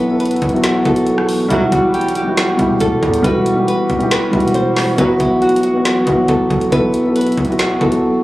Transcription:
Already playing: B1 E3 F#3 B3 E4 F#4 A4 B4 F#5
0.07 B3 E4
0.11 A4
0.20 B4, closed hi-hat
0.25 closed hi-hat
0.31 closed hi-hat
0.36 closed hi-hat
0.42 B1, kick, closed hi-hat
0.49 B3 E4, closed hi-hat
0.55 F#4, closed hi-hat
0.64 snare, closed hi-hat
0.83 B1 B3 E4 A4, kick, closed hi-hat
0.87 F#4
0.96 closed hi-hat
1.07 closed hi-hat
1.18 cross-stick
1.29 open hi-hat
1.48 E1 B1 G2 E3 F#3 G3 E4, kick, closed hi-hat
1.53 F#4
1.72 B1 F#4, kick, closed hi-hat
1.94 G4, closed hi-hat
2.01 closed hi-hat
2.08 closed hi-hat
2.15 G4, closed hi-hat
2.24 G3 E4
2.29 F#4
2.37 snare, closed hi-hat
2.57 E1 G3 E4, kick, closed hi-hat
2.61 G4
2.80 E1 A4, kick, closed hi-hat
3.03 E2, kick, closed hi-hat
3.14 closed hi-hat
3.22 E1 G3 E4 B4, kick, closed hi-hat
3.27 F#4
3.46 closed hi-hat
3.55 G3 E4
3.59 G4
3.68 B4, closed hi-hat
3.90 E1, kick, closed hi-hat
3.98 G3 E4, closed hi-hat
4.03 G4
4.11 B4, snare, closed hi-hat
4.31 E1 G3 E4, kick, closed hi-hat
4.35 F#4
4.40 closed hi-hat
4.48 closed hi-hat
4.54 C5, closed hi-hat
4.76 C5, snare, open hi-hat
4.96 B1 B2 F#3 B3 E4 F#4 B4, kick, closed hi-hat
5.00 F#4
5.20 B1 E4, kick, closed hi-hat
5.42 F#4, closed hi-hat
5.49 closed hi-hat
5.56 closed hi-hat
5.63 F#4, closed hi-hat
5.72 B3 E4
5.77 F#4
5.85 snare, closed hi-hat
6.05 B1 B3 E4, kick, closed hi-hat
6.09 F#4
6.28 B1 A4, kick, closed hi-hat
6.50 B1, kick, closed hi-hat
6.61 closed hi-hat
6.70 B1 B3 E4 B4, kick, closed hi-hat
6.75 A4
6.94 closed hi-hat
7.03 B3 E4
7.07 A4
7.16 B4, closed hi-hat
7.21 closed hi-hat
7.27 closed hi-hat
7.32 closed hi-hat
7.37 B1, kick, closed hi-hat
7.45 B3 E4, closed hi-hat
7.50 F#4, closed hi-hat
7.59 snare, closed hi-hat
7.79 B1 B3 E4 A4, kick, closed hi-hat
7.83 F#4
7.92 closed hi-hat

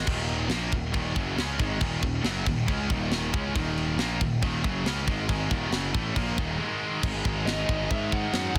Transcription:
0.07 D#1 D#2 A#2 D#3, kick, crash
0.29 crash
0.49 A#1 A#2 F3 A#3, snare, crash
0.72 D#1 D#2 A#2, kick, crash
0.94 D#1 D#2 A#2 D#3, kick, crash
1.15 F#1 F#2 C#3 F#3, kick, crash
1.36 C#2 C#3 G#3 C#4, snare, crash
1.58 G#1 G#2 D#3 G#3, kick, crash
1.80 D#1 D#2 A#2 D#3, kick, crash
2.02 D#1 D#2 A#2, kick, crash
2.24 F#1 F#2 C#3 F#3, snare, crash
2.46 D#1 D#2 A#2, kick, crash
2.66 C#2 C#3 G#3 C#4, kick, crash
2.88 D#1 D#2 A#2 D#3, kick, crash
3.11 snare, crash
3.32 C#2 C#3 G#3 C#4, kick
3.54 D#1 D#2 A#2 D#3, kick, crash
3.77 crash
3.97 A#1 A#2 F3 A#3, snare, crash
4.21 D#1 D#2 A#2, kick, crash
4.42 D#1 D#2 A#2 D#3, kick, crash
4.63 F#1 F#2 C#3 F#3, kick, crash
4.84 C#2 C#3 G#3 C#4, snare, crash
5.06 G#1 G#2 D#3 G#3, kick, crash
5.28 G#1 G#2 D#3 G#3, kick, crash
5.50 D#1 D#2 A#2 D#3, kick, crash
5.70 F#1 F#2 C#3 F#3, snare, crash
5.93 A1 A2 E3 A3, kick, crash
6.15 A#1 A#2 F3 A#3, kick, crash
6.37 D#1 D#2 A#2 D#3, kick
6.59 G#2 D#3 G#3
7.02 G#1 G#2 D#3 G#3 B3 D#4, kick, crash
7.25 G#1, kick
7.45 G#1 D#5, snare, crash
7.67 G#1 G#2 D#3 G#3 B3 D#4, kick
7.90 G#2 E5, kick, crash
8.12 F#5, kick
8.33 F#2, snare, crash
8.55 C#2 G#3, kick

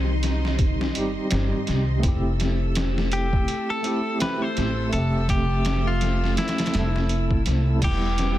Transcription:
Already playing: C2 G3 C4 D#4 G4 D#5 C6
0.23 snare, closed hi-hat
0.45 snare
0.59 kick, closed hi-hat
0.81 snare
0.93 G1 G3 C4 D#4, closed hi-hat
0.98 G4
1.29 G1 G3 C4 D#4, snare, closed hi-hat
1.34 G4
1.67 C2, snare, closed hi-hat
1.99 A3 C4
2.03 F1 E4 A4 E6, kick, closed hi-hat
2.08 G4
2.40 snare, closed hi-hat
2.75 snare, closed hi-hat
2.98 snare
3.12 G4, closed hi-hat
3.33 kick
3.48 closed hi-hat
3.70 A4
3.83 A3 C4 E4, closed hi-hat
3.87 G4
4.19 A3 C4 E4 B4, snare, closed hi-hat
4.23 G4
4.42 C5
4.57 A1, snare, closed hi-hat
4.89 A3 C4 A4, closed hi-hat
4.93 F1 E5
4.98 G4
5.29 G4, kick, closed hi-hat
5.65 snare, closed hi-hat
5.87 F4
6.01 snare, closed hi-hat
6.24 snare
6.37 E4, snare, closed hi-hat
6.48 snare, closed hi-hat
6.58 snare, closed hi-hat
6.66 A3, snare, closed hi-hat
6.72 F1 C4 E4, snare, closed hi-hat
6.79 A4
6.96 snare
7.09 closed hi-hat
7.31 kick
7.46 C2, snare, closed hi-hat
7.66 A3 C4 E4
7.70 A4
7.79 E1 G3 B3 B4 G5 E6, kick, closed hi-hat, crash
7.84 G4
8.18 snare, closed hi-hat

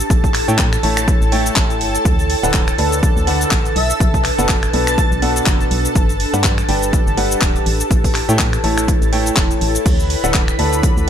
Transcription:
Already playing: E4 G4 A4 B4 A5
0.00 cabasa
0.10 A1, kick, closed hi-hat, cabasa
0.24 kick, closed hi-hat, cabasa
0.34 finger snap, clap, open hi-hat
0.48 A2 A3 E4 A4 C#5 G5, closed hi-hat, cabasa
0.58 G5, kick, clap, closed hi-hat, cabasa
0.65 C#5
0.73 finger snap, closed hi-hat, cabasa
0.83 A1 A3 E4 A4 C#5 A5, open hi-hat
0.97 finger snap, closed hi-hat, cabasa
1.08 kick, closed hi-hat, cabasa
1.21 A1, cabasa
1.32 A3 E4 A4 C#5 G5, open hi-hat
1.46 closed hi-hat, cabasa
1.56 A1, kick, clap, closed hi-hat, cabasa
1.70 closed hi-hat, cabasa
1.81 G1, open hi-hat
1.95 closed hi-hat, cabasa
2.05 D2 D4, kick, closed hi-hat, cabasa
2.15 B4
2.19 closed hi-hat, cabasa
2.30 open hi-hat
2.43 D1 D3 D4 A4 B4 F#5, closed hi-hat, cabasa
2.54 kick, clap, closed hi-hat, cabasa
2.68 finger snap, closed hi-hat, cabasa
2.78 D2 D3 D4 A4 B4 A5, open hi-hat
2.92 closed hi-hat, cabasa
3.03 kick, closed hi-hat, cabasa
3.17 D2, cabasa
3.27 D3 D4 A4 B4 F#5, open hi-hat
3.41 closed hi-hat, cabasa
3.51 A1, kick, clap, closed hi-hat, cabasa
3.65 closed hi-hat, cabasa
3.76 B1 E5, open hi-hat
3.90 closed hi-hat, cabasa
4.00 B1, kick, closed hi-hat, cabasa
4.14 kick, closed hi-hat, cabasa
4.24 finger snap, clap, open hi-hat
4.38 F#1 B2 D4 A4 B4 F#5, closed hi-hat, cabasa
4.49 kick, clap, closed hi-hat, cabasa
4.63 finger snap, closed hi-hat, cabasa
4.73 B1 B2 D4 A4 B4 A5, open hi-hat
4.87 A5, finger snap, closed hi-hat, cabasa
4.98 kick, closed hi-hat, cabasa
5.12 B1, cabasa
5.22 B2 D4 A4 B4 F#5, open hi-hat
5.36 closed hi-hat, cabasa
5.46 F#1, kick, clap, closed hi-hat, cabasa
5.60 closed hi-hat, cabasa
5.71 B1, open hi-hat
5.85 closed hi-hat, cabasa
5.95 G1, kick, closed hi-hat, cabasa
6.09 closed hi-hat, cabasa
6.20 open hi-hat
6.34 G2 G3 D4 G4 B4 F#5, closed hi-hat, cabasa
6.44 kick, clap, closed hi-hat, cabasa
6.58 finger snap, closed hi-hat, cabasa
6.69 G1 G3 D4 G4 B4 G5, open hi-hat
6.82 closed hi-hat, cabasa
6.93 kick, closed hi-hat, cabasa
7.07 G1, cabasa
7.17 G3 D4 G4 B4 F#5, open hi-hat
7.31 closed hi-hat, cabasa
7.41 D1, kick, clap, closed hi-hat, cabasa
7.56 closed hi-hat, cabasa
7.66 A1 E4, open hi-hat
7.80 closed hi-hat, cabasa
7.91 A1 A4, kick, closed hi-hat, cabasa
8.04 kick, open hi-hat, cabasa
8.15 finger snap, clap, open hi-hat
8.29 A2 A3 E4 A4 C#5 G5, closed hi-hat, cabasa
8.39 C#5, kick, clap, closed hi-hat, cabasa
8.53 finger snap, closed hi-hat, cabasa
8.64 A1 A3 E4 A4 C#5 G5 A5, open hi-hat
8.78 finger snap, closed hi-hat, cabasa
8.88 kick, closed hi-hat, cabasa
9.02 A1, closed hi-hat, cabasa
9.13 A3 E4 A4 C#5 G5, open hi-hat
9.26 closed hi-hat, cabasa
9.36 E1, kick, clap, closed hi-hat, cabasa
9.51 closed hi-hat, cabasa
9.61 A1, open hi-hat
9.75 closed hi-hat, cabasa
9.86 D2 D4 B4 B5, kick, closed hi-hat, crash, cabasa
9.99 closed hi-hat, cabasa
10.10 open hi-hat
10.20 D1 D3 D4 A4 B4 F#5 A5, closed hi-hat
10.24 cabasa
10.34 kick, clap, closed hi-hat, cabasa
10.48 finger snap, closed hi-hat, cabasa
10.53 B4
10.59 D2 D3 D4 A4 B4 A5, open hi-hat
10.73 closed hi-hat, cabasa
10.83 kick, closed hi-hat, cabasa
10.97 D2, cabasa

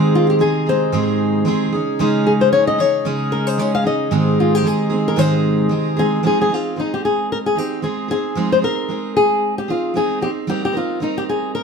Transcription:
Already playing: G#2 C3 D#3 G#3 C4 D#4 G#4
0.15 F4
0.30 G4
0.39 G#3 C4 D#4 G#4
0.66 G#3 C4 D#4 G#4 C5
0.92 G#2 D#3 G#3 C4 D#4 G#4
1.45 G#3 C4 D#4 G#4
1.72 C#3 C#4 D#4 G#4
1.99 C#3 G#3 C#4 D#4 G#4
2.27 G#4
2.41 C5
2.52 G#3 C#4 D#4 G#4 C#5
2.67 D#5
2.78 C#4 D#4 G#4 C#5
3.05 C#3 G#3 C#4 D#4 G#4
3.32 A#4
3.47 C5
3.58 G#3 C#4 D#4 G#4 C#5
3.75 F5
3.84 C#4 D#4 G#4 D#5
4.10 G#2 C3 D#3 G#3 C4 D#4 G#4
4.40 F4
4.55 G4
4.63 G#3 C4 D#4 G#4
4.90 G#3 C4 D#4 G#4
5.08 A#4
5.16 G#2 D#3 G#3 C4 D#4 G#4 C5
5.69 G#3 C4 D#4 G#4
5.97 G#3 C4 D#4 G#4
6.23 F3 G#3 C4 D#4 G#4
6.41 G#4
6.49 C4 D#4 G#4
6.54 F4
6.76 G#3 C4 D#4 G#4
6.94 G4
7.05 G#4
7.32 A#4
7.46 G#4
7.55 C4 D#4 G4 G#4
7.82 G#3 C4 D#4 G#4
8.08 C4 D#4 G#4
8.35 F3 G#3 C4 D#4 G#4
8.52 C5
8.62 C4 D#4 G#4 A#4
8.88 G#3 C4 D#4 G#4
9.17 G#4
9.58 G4
9.68 C4 D#4 F4 G#4
9.94 G#3 C4 D#4 G#4
10.21 C4 D#4 G4 G#4
10.47 G3 C4 D#4 G4 A#4
10.65 G4
10.73 C4 D#4 F4 A#4
11.00 G3 C4 D#4 A#4
11.18 G4
11.29 G#4
11.55 A#4

